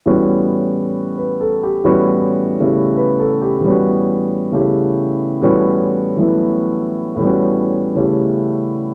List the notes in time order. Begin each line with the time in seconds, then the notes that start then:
0.06 A2 E3 G3 B3 C#4 F#4
1.17 B4
1.41 A4
1.63 G4
1.84 A2 E3 G3 B3 C#4 F#4
2.59 C#3 A3 C#4 E4 G4
2.97 B4
3.20 A4
3.42 G4
3.59 A2 E3
3.64 G3 B3 C#4
3.70 F#4
4.52 C#3 A3 C#4 E4 G4
5.41 A2 E3 G3 B3 C#4 F#4
6.17 E3 F#3 A3 B3 E4
7.16 A2 E3
7.20 G3 B3
7.25 C#4 F#4
7.95 C#3 A3 C#4 E4 G4